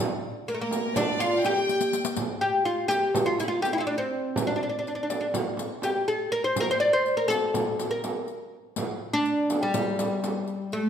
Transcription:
0.48 A#3 A#4, riq
0.54 A3
0.59 A#3 A#4
0.71 riq, frame drum
0.95 D4 D5 E5, riq, frame drum
0.99 D5
1.18 F4 F5, riq, frame drum
1.41 G5, riq, frame drum
1.46 G4
1.69 riq
1.81 riq
1.93 riq
2.05 riq
2.16 riq, frame drum
2.41 G4
2.65 F4, riq
2.88 G4, riq, frame drum
3.14 riq, frame drum
3.26 F4
3.39 E4, riq, frame drum
3.48 F4
3.62 G4, riq, frame drum
3.73 E4
3.78 E4 F4
3.87 D4
3.98 C4
4.36 riq, frame drum
4.47 D4
4.56 D4
4.63 D4
4.69 D4
4.79 D4
4.87 D4, riq
4.95 D4
5.03 D4
5.10 D4, riq, frame drum
5.21 D4
5.34 riq, frame drum
5.57 riq, frame drum
5.82 G4, riq, frame drum
6.08 A4, riq
6.32 A#4
6.44 C5
6.56 riq, frame drum
6.60 A#4
6.71 C5
6.80 D5
6.93 C5
7.06 riq
7.17 A#4
7.28 A4, riq, frame drum
7.54 riq, frame drum
7.79 riq, frame drum
7.91 A#4
8.04 riq, frame drum
8.28 riq
8.76 riq, frame drum
9.13 D4
9.25 riq
9.50 riq, frame drum
9.63 G3
9.74 riq, frame drum
9.99 riq, frame drum
10.24 riq, frame drum
10.47 riq
10.72 A3 A4, riq

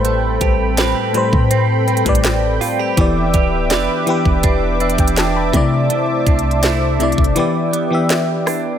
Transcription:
Already playing: A1 A2 G3 C4 A4 B4 C5 G5 B5
0.05 A3, closed hi-hat
0.41 A1 G4, kick, closed hi-hat
0.77 C4 G4 B4, snare, closed hi-hat
1.13 A2 G3 B4, closed hi-hat
1.17 C5
1.33 A2, kick
1.51 C4, closed hi-hat
1.88 C4, closed hi-hat
1.97 closed hi-hat
2.05 A1 A2 G3 B4, kick, closed hi-hat
2.09 D5
2.15 closed hi-hat
2.24 snare, closed hi-hat
2.61 F4, open hi-hat
2.79 G4
2.97 E1 E3 B3 G4 B4 E5 D6, kick, closed hi-hat
3.01 D5
3.34 D1 G4, kick, closed hi-hat
3.70 F1 D4 G4 B4, snare, closed hi-hat
4.06 E3 B3 G4, closed hi-hat
4.10 B4
4.25 E1, kick
4.43 E1 D4, kick, closed hi-hat
4.80 D4 E5, closed hi-hat
4.90 closed hi-hat
4.98 E1 E5 G5, kick, closed hi-hat
5.08 closed hi-hat
5.17 A5, snare, closed hi-hat
5.36 G5 B5
5.53 C3 A3 E4 C5 A5, kick, closed hi-hat
5.57 D5
5.90 C3, closed hi-hat
6.26 C2 D4, kick, closed hi-hat
6.39 closed hi-hat
6.51 closed hi-hat
6.63 A3 D4 E4, snare, closed hi-hat
6.99 C3 A3 E4, closed hi-hat
7.03 D5
7.12 closed hi-hat
7.18 G1, kick
7.24 closed hi-hat
7.35 E3 B3 G4 B4 G5, closed hi-hat
7.39 D5
7.73 B3, closed hi-hat
7.90 E3 B3 G4
7.94 E5
8.10 snare, closed hi-hat
8.46 D4, cross-stick, open hi-hat

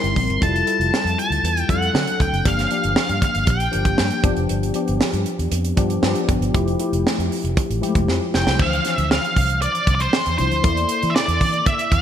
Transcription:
Already playing: G3 C4 D#4 E4 A#4 C6
0.04 G1, closed hi-hat
0.16 A#1, kick, open hi-hat
0.29 G1, closed hi-hat
0.41 F1 G3 E4 F4 A4 A5, kick, closed hi-hat
0.56 closed hi-hat
0.66 G3 E4 F4 A4, closed hi-hat
0.80 F1, closed hi-hat
0.94 snare
1.04 F2, closed hi-hat
1.19 A5, closed hi-hat
1.30 D2, closed hi-hat
1.43 E2, closed hi-hat
1.57 closed hi-hat
1.68 F2 G3 E4 F4 A4 F#5, kick, closed hi-hat
1.82 closed hi-hat
1.93 D3 F#3 C4 D4 A4, snare
2.07 closed hi-hat
2.20 D2 G5, kick, closed hi-hat
2.33 F#1, closed hi-hat
2.45 G1 F3 A#3 D4 G4 F5, kick, closed hi-hat
2.59 snare, closed hi-hat
2.71 F3 A#3 D4 G4, closed hi-hat
2.84 G1, closed hi-hat
2.96 muted fingered electric bass stroke, snare
3.09 G2, closed hi-hat
3.22 F5, kick, closed hi-hat
3.35 G1, closed hi-hat
3.47 A#1 G5, kick, closed hi-hat
3.60 closed hi-hat
3.71 G1 F3 A#3 D4 G4, closed hi-hat
3.85 kick, closed hi-hat
3.98 G2, snare
4.10 closed hi-hat
4.23 G1 F3 B3 D4 G4, kick, closed hi-hat
4.37 F1, closed hi-hat
4.49 G1, closed hi-hat
4.63 closed hi-hat
4.74 F3 B3 D4 G4, closed hi-hat
4.88 G1, closed hi-hat
5.01 snare
5.13 G2, closed hi-hat
5.26 closed hi-hat
5.39 E2, closed hi-hat
5.52 F2, closed hi-hat
5.65 closed hi-hat
5.76 G2 F3 B3 D4 G4, kick, closed hi-hat
5.90 closed hi-hat
6.02 G2 F3 B3 D4 G4, snare
6.15 closed hi-hat
6.29 G1, kick, closed hi-hat
6.41 G1, closed hi-hat
6.54 F1 F3 A3 E4 G4, kick, closed hi-hat
6.68 closed hi-hat
6.79 F3 A3 E4 G4, closed hi-hat
6.93 F1, closed hi-hat
7.07 snare
7.18 F2, closed hi-hat
7.32 open hi-hat
7.44 F1, closed hi-hat
7.57 kick, closed hi-hat
7.70 A1, closed hi-hat
7.81 F3 G#3 E4 G4, closed hi-hat
7.88 A3
7.95 F1, kick, closed hi-hat
8.08 F2, snare
8.34 F1 G5, snare
8.46 C2, snare
8.58 D2 E3 F3 D4 C5 F5, kick, crash
8.73 closed hi-hat
8.85 snare, closed hi-hat
8.96 D2 E5, closed hi-hat
9.11 F5, snare
9.24 closed hi-hat
9.36 C2, kick, open hi-hat
9.50 closed hi-hat
9.62 D5, closed hi-hat
9.75 closed hi-hat
9.87 C2, kick, closed hi-hat
9.95 D5
10.00 C5, closed hi-hat
10.13 snare
10.26 E2, closed hi-hat
10.38 C2 F3 D4 E4 C5, closed hi-hat
10.52 closed hi-hat
10.63 E2 A#3 E4 A4 D5, kick, closed hi-hat
10.77 closed hi-hat
10.89 closed hi-hat
11.03 E3, closed hi-hat
11.10 E5
11.15 D5, snare
11.28 E2, closed hi-hat
11.41 E3, kick, open hi-hat
11.54 closed hi-hat
11.66 E5, kick, closed hi-hat
11.79 closed hi-hat
11.92 E2 G#5, kick, closed hi-hat

